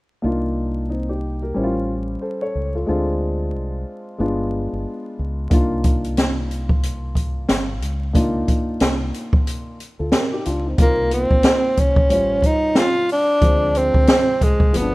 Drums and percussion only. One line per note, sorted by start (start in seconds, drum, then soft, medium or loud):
5.51 kick loud
5.51 closed hi-hat medium
5.84 kick medium
5.84 closed hi-hat medium
6.04 closed hi-hat soft
6.17 snare medium
6.17 closed hi-hat medium
6.51 closed hi-hat medium
6.69 kick medium
6.83 closed hi-hat medium
7.15 kick medium
7.15 closed hi-hat medium
7.49 snare medium
7.49 closed hi-hat medium
7.82 closed hi-hat medium
8.15 kick medium
8.15 closed hi-hat medium
8.48 kick medium
8.48 closed hi-hat medium
8.80 snare medium
8.80 closed hi-hat medium
9.14 closed hi-hat medium
9.33 kick loud
9.47 closed hi-hat medium
9.80 closed hi-hat medium
10.12 snare loud
10.12 closed hi-hat medium
10.45 closed hi-hat medium
10.78 kick loud
10.78 closed hi-hat medium
11.11 closed hi-hat medium
11.31 kick medium
11.43 snare loud
11.43 closed hi-hat medium
11.77 kick medium
11.77 closed hi-hat medium
11.96 kick medium
12.10 closed hi-hat medium
12.42 kick medium
12.42 closed hi-hat medium
12.75 snare medium
12.75 closed hi-hat medium
13.09 open hi-hat soft
13.41 kick medium
13.41 closed hi-hat medium
13.75 closed hi-hat medium
13.94 kick medium
14.07 snare loud
14.07 closed hi-hat medium
14.41 kick medium
14.41 closed hi-hat medium
14.60 kick loud
14.74 closed hi-hat medium